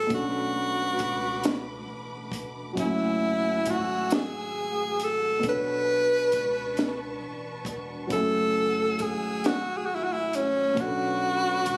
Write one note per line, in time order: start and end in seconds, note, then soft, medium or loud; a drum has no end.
0.00 0.11 G#1 loud
0.00 2.73 A3 medium
0.00 0.12 A4 loud
0.07 0.95 B1 loud
0.07 2.71 B2 medium
0.07 2.72 B3 medium
0.07 2.74 B4 medium
0.07 2.75 B5 medium
0.07 2.74 D6 medium
0.07 kick loud
0.07 closed hi-hat medium
0.11 2.73 C#4 medium
0.11 2.75 D4 medium
0.11 1.86 F#4 loud
0.16 2.76 A4 medium
0.99 1.89 C#2 medium
0.99 kick medium
0.99 closed hi-hat medium
1.44 snare loud
1.44 closed hi-hat medium
1.89 2.32 A1 medium
2.32 2.73 E1 medium
2.32 kick medium
2.32 closed hi-hat medium
2.73 5.38 F#3 medium
2.73 5.39 C#4 medium
2.73 kick loud
2.73 closed hi-hat medium
2.78 3.62 F#1 loud
2.78 5.41 A3 medium
2.78 5.40 E4 medium
2.78 3.72 E4 medium
2.78 5.42 F#5 medium
2.78 5.42 G#5 medium
2.78 5.41 G#5 medium
2.78 5.42 E6 medium
2.83 5.42 A3 medium
3.66 5.44 G#1 medium
3.66 kick medium
3.66 closed hi-hat medium
3.71 4.16 F#4 medium
4.10 snare loud
4.10 closed hi-hat medium
4.15 5.06 G#4 loud
5.00 closed hi-hat medium
5.04 5.46 A4 medium
5.39 8.04 B2 medium
5.39 8.05 B3 medium
5.39 8.07 D4 medium
5.39 8.07 A5 medium
5.39 8.07 C#6 medium
5.39 closed hi-hat medium
5.44 6.29 B1 medium
5.44 8.07 D4 medium
5.44 8.08 A4 medium
5.44 8.08 B4 medium
5.44 kick loud
5.49 7.20 B4 loud
5.49 8.09 C#5 medium
6.32 7.22 C#2 medium
6.32 kick medium
6.32 closed hi-hat medium
6.77 snare loud
6.77 closed hi-hat medium
7.22 7.62 A1 medium
7.65 8.06 E1 medium
7.65 kick medium
7.65 closed hi-hat medium
8.07 10.71 F#3 medium
8.07 11.77 A3 medium
8.07 10.72 C#4 medium
8.07 10.74 F#5 medium
8.07 10.74 G#5 medium
8.07 10.75 E6 medium
8.07 kick loud
8.07 closed hi-hat medium
8.11 8.96 F#1 loud
8.11 10.74 E4 medium
8.11 9.03 A4 loud
8.11 10.75 G#5 medium
8.16 10.76 A3 medium
8.99 10.74 G#1 medium
8.99 9.48 G#4 loud
8.99 kick medium
8.99 closed hi-hat medium
9.44 9.79 F#4 loud
9.44 snare loud
9.44 closed hi-hat medium
9.77 9.87 G#4 medium
9.86 9.97 F#4 medium
9.95 10.06 E4 medium
10.04 10.14 F#4 medium
10.13 10.37 E4 medium
10.33 10.82 C#4 medium
10.33 closed hi-hat medium
10.73 11.77 B2 medium
10.73 11.77 B3 medium
10.73 11.77 B4 medium
10.73 11.77 D6 medium
10.73 kick loud
10.73 closed hi-hat medium
10.78 11.62 B1 loud
10.78 11.77 C#4 medium
10.78 11.77 D4 medium
10.78 11.77 F#4 loud
10.78 11.77 B5 medium
10.82 11.77 A4 medium
11.66 11.77 C#2 medium
11.66 kick medium
11.66 closed hi-hat medium